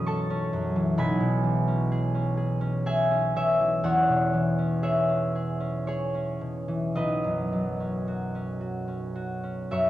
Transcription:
0.00 0.97 B1 medium
0.00 0.52 F#2 soft
0.00 0.75 E3 soft
0.00 0.29 C#4 medium
0.00 1.97 C#5 medium
0.00 1.03 F#5 medium
0.00 0.97 B5 medium
0.00 0.41 D#6 medium
0.06 1.03 A4 medium
0.06 1.03 A5 medium
0.06 3.96 C#6 medium
0.30 1.66 C#4 medium
0.53 1.03 F#2 medium
0.76 1.03 E3 soft
0.98 3.88 B1 medium
0.98 2.85 G#5 medium
0.98 4.88 B5 loud
1.21 3.35 B2 soft
1.44 3.59 E3 soft
1.68 2.13 C#4 medium
1.92 2.36 G#4 medium
2.15 2.60 C#4 medium
2.37 2.85 G#4 soft
2.61 3.10 C#4 medium
2.86 4.82 G#4 medium
2.86 3.35 E5 medium
2.86 6.77 G#5 medium
3.11 4.57 C#4 medium
3.36 3.90 B2 soft
3.36 3.84 C#5 medium
3.36 4.82 E5 medium
3.60 3.89 E3 soft
3.84 6.99 E2 medium
3.84 4.83 C#5 medium
3.84 7.74 F#5 medium
4.09 6.40 B2 soft
4.34 6.67 E3 soft
4.58 5.08 C#4 medium
4.83 5.34 G#4 medium
4.83 5.86 C#5 medium
4.83 7.00 E5 medium
5.09 5.59 C#4 soft
5.35 5.87 G#4 soft
5.60 6.13 C#4 soft
5.87 7.01 G#4 medium
5.87 9.72 C#5 medium
6.15 7.79 C#4 soft
6.41 7.01 B2 soft
6.68 7.01 E3 soft
6.95 9.90 B1 medium
6.95 9.90 B4 medium
6.95 9.90 D#5 medium
7.24 9.70 F#2 soft
7.53 9.90 F#3 soft
7.80 8.34 C#4 soft
8.08 8.59 F#4 soft
8.35 8.87 C#4 soft
8.61 9.14 F#4 soft
8.88 9.42 C#4 soft
9.16 9.90 F#4 medium
9.43 9.90 C#4 soft
9.71 9.90 F#2 soft
9.71 9.90 C#5 medium
9.71 9.90 E5 medium

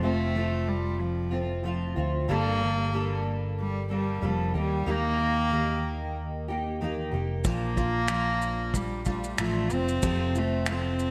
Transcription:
0.00 1.93 F1 medium
0.00 0.34 F3 soft
0.00 0.69 A3 medium
0.00 0.34 A3 soft
0.00 0.35 C4 soft
0.00 0.35 F4 soft
0.35 1.32 F3 soft
0.35 1.32 A3 soft
0.35 1.31 C4 medium
0.35 1.29 F4 medium
0.68 1.02 G3 medium
1.01 1.65 F3 medium
1.31 1.62 F3 soft
1.31 1.63 A3 soft
1.31 1.64 C4 soft
1.31 1.64 F4 soft
1.63 1.96 F3 medium
1.63 1.96 A3 medium
1.63 1.95 C4 medium
1.63 1.95 F4 medium
1.96 2.26 D2 medium
1.96 2.28 F3 soft
1.96 2.29 A3 soft
1.96 2.28 C4 soft
1.96 2.28 F4 soft
2.28 4.18 G1 loud
2.28 2.61 G2 medium
2.28 2.61 D3 medium
2.28 2.61 G3 medium
2.28 2.60 A#3 medium
2.28 3.22 A#3 loud
2.28 2.60 D4 medium
2.28 2.59 A4 medium
2.61 2.91 G3 soft
2.61 2.92 A#3 soft
2.61 2.93 D4 soft
2.61 2.93 A4 soft
2.93 3.91 G3 medium
2.93 3.91 A#3 medium
2.93 3.89 D4 medium
2.93 3.88 A4 medium
3.60 3.89 G3 medium
3.90 4.20 G3 soft
3.90 4.27 G3 medium
3.90 4.21 A#3 soft
3.90 4.21 D4 soft
3.90 4.22 A4 soft
4.21 4.52 F1 medium
4.21 4.56 F3 medium
4.21 4.54 G3 medium
4.21 4.54 A#3 medium
4.21 4.55 D4 medium
4.21 4.53 A4 medium
4.54 4.84 D#2 medium
4.54 4.85 A#3 soft
4.54 4.86 D#4 soft
4.54 4.87 G4 soft
4.58 4.92 G3 medium
4.86 7.09 D#2 medium
4.86 5.19 D#3 medium
4.86 5.19 A#3 medium
4.86 5.18 D#4 medium
4.86 5.17 G4 medium
4.90 6.18 A#3 loud
5.18 5.50 A#3 soft
5.18 5.50 D#4 soft
5.18 5.51 G4 soft
5.50 6.48 D#3 medium
5.50 6.50 A#3 medium
5.50 6.48 D#4 medium
5.50 6.47 G4 medium
6.48 6.81 A#3 soft
6.48 6.81 D#4 soft
6.48 6.81 G4 medium
6.81 7.13 D#3 medium
6.81 7.12 A#3 medium
6.81 7.11 D#4 medium
6.81 7.10 G4 medium
7.11 7.42 F1 medium
7.11 7.45 A#3 soft
7.11 7.44 D#4 soft
7.11 7.44 G4 soft
7.44 9.35 A#1 medium
7.44 7.77 A#2 medium
7.44 7.77 F3 medium
7.44 8.77 A#3 medium
7.44 7.76 D4 medium
7.44 7.75 F4 medium
7.44 kick loud
7.44 shaker medium
7.76 8.08 D4 soft
7.76 8.09 F4 soft
7.76 kick medium
7.76 shaker soft
8.08 9.37 F3 soft
8.08 9.05 D4 medium
8.08 9.05 F4 medium
8.08 finger snap loud
8.08 shaker medium
8.42 shaker soft
8.74 9.07 G3 medium
8.74 kick medium
8.74 shaker medium
9.05 9.41 G3 medium
9.05 9.38 A3 soft
9.05 9.38 D4 soft
9.05 9.38 F4 soft
9.05 kick medium
9.05 shaker soft
9.24 shaker soft
9.38 9.68 A1 medium
9.38 9.71 F3 soft
9.38 9.71 A3 medium
9.38 9.73 A3 medium
9.38 9.70 D4 medium
9.38 9.69 F4 medium
9.38 finger snap medium
9.38 shaker medium
9.70 10.01 F1 medium
9.70 10.02 F3 soft
9.70 10.03 A3 soft
9.70 10.02 C4 soft
9.70 10.39 C4 medium
9.70 10.03 F4 soft
9.70 shaker soft
9.88 shaker medium
10.02 11.11 F1 medium
10.02 10.36 F2 medium
10.02 10.36 C3 medium
10.02 10.36 F3 medium
10.02 10.36 A3 medium
10.02 10.35 C4 medium
10.02 10.34 F4 medium
10.02 kick loud
10.02 shaker medium
10.35 10.66 F3 soft
10.35 10.67 A3 soft
10.35 10.72 A3 medium
10.35 10.68 C4 soft
10.35 10.68 F4 soft
10.35 shaker soft
10.66 11.11 F3 soft
10.66 11.11 A3 medium
10.66 11.11 C4 medium
10.66 11.11 F4 medium
10.66 finger snap medium
10.66 shaker medium
10.70 11.11 C4 medium
10.99 shaker soft

